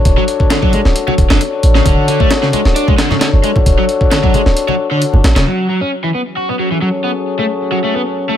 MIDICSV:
0, 0, Header, 1, 6, 480
1, 0, Start_track
1, 0, Key_signature, 3, "minor"
1, 0, Tempo, 451128
1, 57, Time_signature, 4, 2, 24, 8
1, 8907, End_track
2, 0, Start_track
2, 0, Title_t, "Analog synth pad"
2, 0, Program_c, 0, 89
2, 5816, Note_on_c, 0, 66, 68
2, 5817, Note_on_c, 0, 80, 66
2, 5818, Note_on_c, 0, 73, 80
2, 8907, Note_off_c, 0, 66, 0
2, 8907, Note_off_c, 0, 73, 0
2, 8907, Note_off_c, 0, 80, 0
2, 8907, End_track
3, 0, Start_track
3, 0, Title_t, "Brass ensemble"
3, 0, Program_c, 1, 61
3, 0, Note_on_c, 1, 62, 82
3, 0, Note_on_c, 1, 66, 76
3, 0, Note_on_c, 1, 69, 76
3, 0, Note_on_c, 1, 73, 93
3, 1355, Note_off_c, 1, 62, 0
3, 1355, Note_off_c, 1, 66, 0
3, 1355, Note_off_c, 1, 69, 0
3, 1355, Note_off_c, 1, 73, 0
3, 1382, Note_on_c, 1, 62, 86
3, 1382, Note_on_c, 1, 69, 81
3, 1382, Note_on_c, 1, 73, 95
3, 1383, Note_on_c, 1, 66, 80
3, 3149, Note_off_c, 1, 62, 0
3, 3149, Note_off_c, 1, 66, 0
3, 3149, Note_off_c, 1, 69, 0
3, 3149, Note_off_c, 1, 73, 0
3, 3176, Note_on_c, 1, 69, 78
3, 3176, Note_on_c, 1, 73, 93
3, 3177, Note_on_c, 1, 62, 88
3, 3177, Note_on_c, 1, 66, 79
3, 5194, Note_off_c, 1, 62, 0
3, 5194, Note_off_c, 1, 66, 0
3, 5194, Note_off_c, 1, 69, 0
3, 5194, Note_off_c, 1, 73, 0
3, 5222, Note_on_c, 1, 62, 79
3, 5223, Note_on_c, 1, 69, 73
3, 5223, Note_on_c, 1, 73, 87
3, 5224, Note_on_c, 1, 66, 70
3, 5803, Note_off_c, 1, 62, 0
3, 5803, Note_off_c, 1, 66, 0
3, 5803, Note_off_c, 1, 69, 0
3, 5803, Note_off_c, 1, 73, 0
3, 7016, Note_on_c, 1, 66, 75
3, 7017, Note_on_c, 1, 68, 70
3, 7017, Note_on_c, 1, 69, 69
3, 7017, Note_on_c, 1, 73, 83
3, 8907, Note_off_c, 1, 66, 0
3, 8907, Note_off_c, 1, 68, 0
3, 8907, Note_off_c, 1, 69, 0
3, 8907, Note_off_c, 1, 73, 0
3, 8907, End_track
4, 0, Start_track
4, 0, Title_t, "Overdriven electric guitar"
4, 0, Program_c, 2, 29
4, 186, Note_on_c, 2, 54, 96
4, 242, Note_off_c, 2, 54, 0
4, 540, Note_on_c, 2, 50, 100
4, 603, Note_off_c, 2, 50, 0
4, 667, Note_on_c, 2, 54, 94
4, 760, Note_off_c, 2, 54, 0
4, 781, Note_on_c, 2, 56, 74
4, 844, Note_off_c, 2, 56, 0
4, 1149, Note_on_c, 2, 54, 97
4, 1203, Note_off_c, 2, 54, 0
4, 1388, Note_on_c, 2, 50, 73
4, 1493, Note_off_c, 2, 50, 0
4, 1867, Note_on_c, 2, 49, 101
4, 1973, Note_off_c, 2, 49, 0
4, 1980, Note_on_c, 2, 50, 81
4, 2207, Note_off_c, 2, 50, 0
4, 2221, Note_on_c, 2, 50, 73
4, 2326, Note_off_c, 2, 50, 0
4, 2345, Note_on_c, 2, 57, 101
4, 2439, Note_off_c, 2, 57, 0
4, 2585, Note_on_c, 2, 49, 99
4, 2641, Note_off_c, 2, 49, 0
4, 2699, Note_on_c, 2, 56, 75
4, 2762, Note_off_c, 2, 56, 0
4, 2939, Note_on_c, 2, 62, 79
4, 3053, Note_off_c, 2, 62, 0
4, 3067, Note_on_c, 2, 56, 77
4, 3123, Note_off_c, 2, 56, 0
4, 3180, Note_on_c, 2, 50, 78
4, 3286, Note_off_c, 2, 50, 0
4, 3307, Note_on_c, 2, 49, 75
4, 3362, Note_off_c, 2, 49, 0
4, 3419, Note_on_c, 2, 50, 98
4, 3482, Note_off_c, 2, 50, 0
4, 3662, Note_on_c, 2, 56, 76
4, 3724, Note_off_c, 2, 56, 0
4, 4029, Note_on_c, 2, 54, 98
4, 4083, Note_off_c, 2, 54, 0
4, 4380, Note_on_c, 2, 50, 96
4, 4443, Note_off_c, 2, 50, 0
4, 4506, Note_on_c, 2, 54, 96
4, 4599, Note_off_c, 2, 54, 0
4, 4620, Note_on_c, 2, 56, 76
4, 4683, Note_off_c, 2, 56, 0
4, 4984, Note_on_c, 2, 54, 100
4, 5041, Note_off_c, 2, 54, 0
4, 5226, Note_on_c, 2, 50, 75
4, 5332, Note_off_c, 2, 50, 0
4, 5707, Note_on_c, 2, 49, 100
4, 5812, Note_off_c, 2, 49, 0
4, 5817, Note_on_c, 2, 54, 69
4, 6043, Note_off_c, 2, 54, 0
4, 6056, Note_on_c, 2, 54, 66
4, 6164, Note_off_c, 2, 54, 0
4, 6183, Note_on_c, 2, 61, 89
4, 6278, Note_off_c, 2, 61, 0
4, 6425, Note_on_c, 2, 52, 88
4, 6481, Note_off_c, 2, 52, 0
4, 6538, Note_on_c, 2, 59, 67
4, 6602, Note_off_c, 2, 59, 0
4, 6775, Note_on_c, 2, 66, 70
4, 6892, Note_off_c, 2, 66, 0
4, 6905, Note_on_c, 2, 59, 66
4, 6961, Note_off_c, 2, 59, 0
4, 7013, Note_on_c, 2, 54, 66
4, 7122, Note_off_c, 2, 54, 0
4, 7142, Note_on_c, 2, 52, 63
4, 7200, Note_off_c, 2, 52, 0
4, 7254, Note_on_c, 2, 54, 89
4, 7320, Note_off_c, 2, 54, 0
4, 7493, Note_on_c, 2, 59, 67
4, 7559, Note_off_c, 2, 59, 0
4, 7864, Note_on_c, 2, 57, 84
4, 7921, Note_off_c, 2, 57, 0
4, 8213, Note_on_c, 2, 54, 86
4, 8279, Note_off_c, 2, 54, 0
4, 8340, Note_on_c, 2, 57, 88
4, 8437, Note_off_c, 2, 57, 0
4, 8456, Note_on_c, 2, 59, 65
4, 8521, Note_off_c, 2, 59, 0
4, 8823, Note_on_c, 2, 57, 86
4, 8880, Note_off_c, 2, 57, 0
4, 8907, End_track
5, 0, Start_track
5, 0, Title_t, "808-style bass"
5, 0, Program_c, 3, 38
5, 56, Note_on_c, 3, 26, 100
5, 153, Note_off_c, 3, 26, 0
5, 906, Note_on_c, 3, 26, 78
5, 990, Note_off_c, 3, 26, 0
5, 1256, Note_on_c, 3, 26, 101
5, 1353, Note_off_c, 3, 26, 0
5, 1384, Note_on_c, 3, 30, 99
5, 1469, Note_off_c, 3, 30, 0
5, 1737, Note_on_c, 3, 33, 99
5, 1922, Note_off_c, 3, 33, 0
5, 1976, Note_on_c, 3, 26, 101
5, 2073, Note_off_c, 3, 26, 0
5, 2821, Note_on_c, 3, 26, 77
5, 2907, Note_off_c, 3, 26, 0
5, 3545, Note_on_c, 3, 30, 97
5, 3629, Note_off_c, 3, 30, 0
5, 3895, Note_on_c, 3, 26, 102
5, 3992, Note_off_c, 3, 26, 0
5, 4744, Note_on_c, 3, 26, 81
5, 4829, Note_off_c, 3, 26, 0
5, 5462, Note_on_c, 3, 30, 97
5, 5548, Note_off_c, 3, 30, 0
5, 5574, Note_on_c, 3, 33, 90
5, 5672, Note_off_c, 3, 33, 0
5, 5700, Note_on_c, 3, 26, 86
5, 5787, Note_off_c, 3, 26, 0
5, 8907, End_track
6, 0, Start_track
6, 0, Title_t, "Drums"
6, 56, Note_on_c, 9, 42, 85
6, 57, Note_on_c, 9, 36, 110
6, 162, Note_off_c, 9, 42, 0
6, 164, Note_off_c, 9, 36, 0
6, 297, Note_on_c, 9, 42, 67
6, 404, Note_off_c, 9, 42, 0
6, 425, Note_on_c, 9, 36, 95
6, 531, Note_off_c, 9, 36, 0
6, 536, Note_on_c, 9, 38, 114
6, 536, Note_on_c, 9, 42, 88
6, 642, Note_off_c, 9, 38, 0
6, 642, Note_off_c, 9, 42, 0
6, 664, Note_on_c, 9, 36, 91
6, 771, Note_off_c, 9, 36, 0
6, 774, Note_on_c, 9, 63, 59
6, 777, Note_on_c, 9, 42, 66
6, 881, Note_off_c, 9, 63, 0
6, 883, Note_off_c, 9, 42, 0
6, 907, Note_on_c, 9, 38, 50
6, 1013, Note_off_c, 9, 38, 0
6, 1018, Note_on_c, 9, 42, 85
6, 1124, Note_off_c, 9, 42, 0
6, 1145, Note_on_c, 9, 63, 65
6, 1251, Note_off_c, 9, 63, 0
6, 1257, Note_on_c, 9, 36, 92
6, 1257, Note_on_c, 9, 42, 68
6, 1363, Note_off_c, 9, 36, 0
6, 1364, Note_off_c, 9, 42, 0
6, 1386, Note_on_c, 9, 38, 115
6, 1492, Note_off_c, 9, 38, 0
6, 1499, Note_on_c, 9, 42, 89
6, 1605, Note_off_c, 9, 42, 0
6, 1736, Note_on_c, 9, 42, 67
6, 1843, Note_off_c, 9, 42, 0
6, 1864, Note_on_c, 9, 38, 52
6, 1970, Note_off_c, 9, 38, 0
6, 1975, Note_on_c, 9, 36, 109
6, 1975, Note_on_c, 9, 42, 87
6, 2082, Note_off_c, 9, 36, 0
6, 2082, Note_off_c, 9, 42, 0
6, 2214, Note_on_c, 9, 42, 68
6, 2320, Note_off_c, 9, 42, 0
6, 2343, Note_on_c, 9, 36, 95
6, 2449, Note_off_c, 9, 36, 0
6, 2453, Note_on_c, 9, 38, 118
6, 2453, Note_on_c, 9, 42, 88
6, 2560, Note_off_c, 9, 38, 0
6, 2560, Note_off_c, 9, 42, 0
6, 2582, Note_on_c, 9, 38, 43
6, 2688, Note_off_c, 9, 38, 0
6, 2694, Note_on_c, 9, 42, 67
6, 2696, Note_on_c, 9, 63, 59
6, 2800, Note_off_c, 9, 42, 0
6, 2803, Note_off_c, 9, 63, 0
6, 2824, Note_on_c, 9, 38, 57
6, 2930, Note_off_c, 9, 38, 0
6, 2937, Note_on_c, 9, 42, 86
6, 3043, Note_off_c, 9, 42, 0
6, 3063, Note_on_c, 9, 63, 57
6, 3064, Note_on_c, 9, 36, 96
6, 3169, Note_off_c, 9, 63, 0
6, 3170, Note_off_c, 9, 36, 0
6, 3176, Note_on_c, 9, 38, 106
6, 3176, Note_on_c, 9, 42, 80
6, 3282, Note_off_c, 9, 38, 0
6, 3282, Note_off_c, 9, 42, 0
6, 3304, Note_on_c, 9, 38, 38
6, 3308, Note_on_c, 9, 64, 77
6, 3410, Note_off_c, 9, 38, 0
6, 3414, Note_off_c, 9, 64, 0
6, 3416, Note_on_c, 9, 38, 117
6, 3416, Note_on_c, 9, 42, 90
6, 3522, Note_off_c, 9, 38, 0
6, 3522, Note_off_c, 9, 42, 0
6, 3656, Note_on_c, 9, 42, 69
6, 3762, Note_off_c, 9, 42, 0
6, 3784, Note_on_c, 9, 36, 95
6, 3790, Note_on_c, 9, 64, 69
6, 3891, Note_off_c, 9, 36, 0
6, 3896, Note_off_c, 9, 64, 0
6, 3896, Note_on_c, 9, 36, 107
6, 3896, Note_on_c, 9, 42, 86
6, 4002, Note_off_c, 9, 42, 0
6, 4003, Note_off_c, 9, 36, 0
6, 4137, Note_on_c, 9, 42, 67
6, 4243, Note_off_c, 9, 42, 0
6, 4265, Note_on_c, 9, 36, 94
6, 4371, Note_off_c, 9, 36, 0
6, 4378, Note_on_c, 9, 38, 119
6, 4378, Note_on_c, 9, 42, 90
6, 4485, Note_off_c, 9, 38, 0
6, 4485, Note_off_c, 9, 42, 0
6, 4505, Note_on_c, 9, 36, 94
6, 4611, Note_off_c, 9, 36, 0
6, 4619, Note_on_c, 9, 42, 67
6, 4619, Note_on_c, 9, 63, 60
6, 4725, Note_off_c, 9, 42, 0
6, 4726, Note_off_c, 9, 63, 0
6, 4746, Note_on_c, 9, 38, 49
6, 4852, Note_off_c, 9, 38, 0
6, 4858, Note_on_c, 9, 42, 88
6, 4965, Note_off_c, 9, 42, 0
6, 4983, Note_on_c, 9, 63, 61
6, 5089, Note_off_c, 9, 63, 0
6, 5337, Note_on_c, 9, 42, 88
6, 5444, Note_off_c, 9, 42, 0
6, 5464, Note_on_c, 9, 64, 74
6, 5571, Note_off_c, 9, 64, 0
6, 5578, Note_on_c, 9, 38, 106
6, 5578, Note_on_c, 9, 42, 79
6, 5685, Note_off_c, 9, 38, 0
6, 5685, Note_off_c, 9, 42, 0
6, 5705, Note_on_c, 9, 38, 105
6, 5705, Note_on_c, 9, 42, 78
6, 5811, Note_off_c, 9, 38, 0
6, 5811, Note_off_c, 9, 42, 0
6, 8907, End_track
0, 0, End_of_file